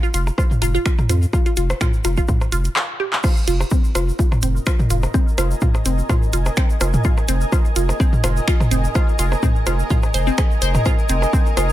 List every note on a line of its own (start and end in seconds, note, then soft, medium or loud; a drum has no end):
0.03 0.07 F4 loud
0.03 shaker soft
0.14 0.31 F1 medium
0.14 0.18 F4 medium
0.14 closed hi-hat medium
0.14 shaker medium
0.27 percussion blips soft
0.27 shaker soft
0.38 0.44 F4 medium
0.38 kick loud
0.38 cross-stick medium
0.38 shaker medium
0.51 mid tom medium
0.51 shaker soft
0.62 0.78 F1 medium
0.62 0.66 F4 loud
0.62 closed hi-hat medium
0.62 percussion blips soft
0.62 shaker medium
0.75 0.78 F4 loud
0.75 shaker soft
0.86 0.89 F4 medium
0.86 finger snap medium
0.86 kick loud
0.86 shaker soft
0.98 mid tom medium
0.98 percussion blips soft
0.98 shaker soft
1.09 1.26 F2 loud
1.09 1.15 F4 medium
1.09 cross-stick soft
1.09 closed hi-hat medium
1.09 shaker medium
1.22 shaker soft
1.33 1.37 F4 loud
1.33 kick loud
1.33 percussion blips soft
1.33 shaker medium
1.46 1.49 F4 loud
1.46 closed hi-hat soft
1.46 shaker soft
1.57 1.73 F1 loud
1.57 1.61 F4 medium
1.57 closed hi-hat medium
1.57 shaker medium
1.70 cross-stick medium
1.70 percussion blips soft
1.70 shaker soft
1.81 1.87 F4 medium
1.81 finger snap medium
1.81 kick loud
1.81 mid tom medium
1.81 shaker medium
1.93 shaker soft
2.04 2.21 F1 medium
2.04 2.08 F4 loud
2.04 closed hi-hat medium
2.04 percussion blips soft
2.04 shaker medium
2.17 2.21 F4 loud
2.17 kick medium
2.17 shaker soft
2.28 2.32 F4 medium
2.28 kick loud
2.28 mid tom medium
2.28 shaker medium
2.41 cross-stick soft
2.41 percussion blips soft
2.41 shaker soft
2.52 2.69 F1 medium
2.52 2.55 F4 loud
2.52 closed hi-hat medium
2.52 shaker medium
2.65 closed hi-hat soft
2.65 shaker soft
2.76 2.82 F5 medium
2.76 clap loud
3.00 3.04 G4 loud
3.13 clap medium
3.23 3.30 F4 medium
3.23 11.72 A#4 medium
3.23 kick loud
3.23 cross-stick medium
3.23 crash loud
3.23 percussion blips soft
3.23 shaker soft
3.37 shaker soft
3.47 3.64 F1 loud
3.47 3.53 F4 medium
3.47 closed hi-hat medium
3.47 shaker medium
3.60 cross-stick soft
3.60 percussion blips soft
3.60 shaker soft
3.70 3.75 C4 medium
3.70 kick loud
3.70 shaker medium
3.84 11.72 D#5 medium
3.84 shaker soft
3.95 4.12 F1 medium
3.95 4.01 F4 medium
3.95 cross-stick medium
3.95 closed hi-hat medium
3.95 percussion blips soft
3.95 shaker loud
4.09 shaker soft
4.19 4.25 F4 medium
4.19 kick loud
4.19 shaker medium
4.32 cross-stick soft
4.32 mid tom medium
4.32 percussion blips soft
4.32 shaker soft
4.38 11.72 G#5 medium
4.42 4.59 F1 medium
4.42 4.47 C4 medium
4.42 closed hi-hat medium
4.42 shaker medium
4.56 shaker soft
4.66 4.72 F4 medium
4.66 finger snap loud
4.66 kick loud
4.66 cross-stick medium
4.66 percussion blips soft
4.66 shaker medium
4.79 mid tom loud
4.79 shaker soft
4.90 5.07 F1 loud
4.90 4.96 F4 medium
4.90 closed hi-hat medium
4.90 shaker medium
5.03 cross-stick soft
5.03 percussion blips soft
5.03 shaker soft
5.14 5.18 C4 medium
5.14 kick loud
5.14 shaker medium
5.28 shaker soft
5.38 5.54 F1 loud
5.38 5.44 F4 medium
5.38 cross-stick medium
5.38 closed hi-hat medium
5.38 percussion blips soft
5.38 shaker medium
5.51 shaker soft
5.61 5.68 F4 medium
5.61 kick loud
5.61 mid tom medium
5.61 shaker medium
5.75 cross-stick soft
5.75 percussion blips soft
5.75 shaker soft
5.85 6.02 F1 medium
5.85 5.89 C4 medium
5.85 closed hi-hat medium
5.85 shaker medium
5.99 shaker soft
6.09 6.15 F4 medium
6.09 kick loud
6.09 cross-stick medium
6.09 mid tom medium
6.09 percussion blips soft
6.09 shaker medium
6.22 shaker soft
6.33 6.50 F1 medium
6.33 6.39 F4 medium
6.33 closed hi-hat medium
6.33 shaker medium
6.46 cross-stick soft
6.46 percussion blips soft
6.46 shaker soft
6.56 6.61 C4 medium
6.56 finger snap loud
6.56 kick loud
6.56 shaker medium
6.70 shaker soft
6.81 6.97 F1 loud
6.81 6.87 F4 medium
6.81 cross-stick medium
6.81 closed hi-hat medium
6.81 percussion blips soft
6.81 shaker medium
6.94 mid tom medium
6.94 shaker soft
7.04 7.11 F4 medium
7.04 kick loud
7.04 shaker medium
7.18 cross-stick soft
7.18 percussion blips soft
7.18 shaker soft
7.28 7.45 F1 loud
7.28 7.32 C4 medium
7.28 closed hi-hat loud
7.28 shaker medium
7.41 shaker soft
7.52 7.58 F4 medium
7.52 kick loud
7.52 cross-stick medium
7.52 percussion blips soft
7.52 shaker medium
7.65 shaker soft
7.76 7.92 F1 loud
7.76 7.82 F4 medium
7.76 closed hi-hat loud
7.76 shaker medium
7.89 cross-stick soft
7.89 percussion blips soft
7.89 shaker soft
8.00 8.04 C4 medium
8.00 kick loud
8.00 shaker medium
8.13 mid tom medium
8.13 shaker soft
8.24 8.40 F1 medium
8.24 8.30 F4 medium
8.24 cross-stick medium
8.24 closed hi-hat loud
8.24 percussion blips soft
8.24 shaker medium
8.37 shaker soft
8.48 8.53 F4 medium
8.48 finger snap loud
8.48 kick loud
8.48 shaker medium
8.60 cross-stick soft
8.60 mid tom loud
8.60 percussion blips soft
8.60 shaker soft
8.71 8.88 F1 loud
8.71 8.75 C4 medium
8.71 closed hi-hat medium
8.71 shaker medium
8.84 shaker soft
8.95 9.01 F4 medium
8.95 kick loud
8.95 cross-stick medium
8.95 percussion blips soft
8.95 shaker medium
9.09 shaker soft
9.19 9.35 F1 loud
9.19 9.25 F4 medium
9.19 closed hi-hat loud
9.19 shaker medium
9.32 cross-stick soft
9.32 percussion blips soft
9.32 shaker soft
9.43 9.47 C4 medium
9.43 kick loud
9.43 mid tom medium
9.43 shaker medium
9.56 shaker soft
9.67 9.83 F1 medium
9.67 9.72 F4 medium
9.67 cross-stick medium
9.67 closed hi-hat loud
9.67 percussion blips soft
9.67 shaker medium
9.79 shaker soft
9.90 9.96 F4 medium
9.90 kick loud
9.90 mid tom medium
9.90 shaker medium
10.03 cross-stick soft
10.03 percussion blips soft
10.03 shaker soft
10.14 10.31 F1 medium
10.14 10.18 C5 medium
10.14 closed hi-hat loud
10.14 shaker medium
10.27 10.30 C4 medium
10.27 shaker soft
10.38 10.42 G#4 medium
10.38 finger snap loud
10.38 kick loud
10.38 cross-stick medium
10.38 percussion blips soft
10.38 shaker medium
10.51 shaker soft
10.62 10.78 F1 loud
10.62 10.66 C5 loud
10.62 closed hi-hat loud
10.62 shaker medium
10.75 cross-stick soft
10.75 mid tom medium
10.75 percussion blips soft
10.75 shaker soft
10.85 10.91 F4 medium
10.85 kick loud
10.85 cross-stick medium
10.85 percussion blips soft
10.85 shaker medium
10.99 shaker soft
11.09 11.26 F1 loud
11.09 11.13 C4 medium
11.09 closed hi-hat medium
11.09 shaker medium
11.22 cross-stick soft
11.22 percussion blips soft
11.22 shaker soft
11.33 11.37 C4 medium
11.33 kick loud
11.33 shaker medium
11.46 shaker soft
11.57 11.72 F1 medium
11.57 11.63 F4 medium
11.57 cross-stick medium
11.57 closed hi-hat medium
11.57 percussion blips soft
11.57 shaker medium